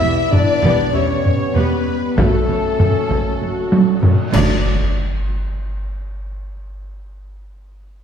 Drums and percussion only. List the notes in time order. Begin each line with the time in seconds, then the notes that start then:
0.33 taiko low-mid
0.64 taiko
1.25 taiko low-mid
2.18 taiko
2.80 taiko low-mid
3.10 taiko
3.72 taiko high
4.03 taiko low-mid
4.33 concert bass drum, taiko, crash